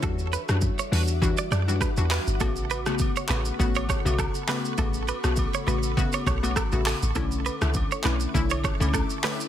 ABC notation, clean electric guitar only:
X:1
M:4/4
L:1/16
Q:"Swing 16ths" 1/4=101
K:Amix
V:1 name="Clean electric guitar"
A z B z2 c B z2 d d z B z B z | A z B z2 c B z2 c c z A z B z | A z B z2 c B z2 c c z A z A z | A z B z2 c B z2 c c z A z B z |]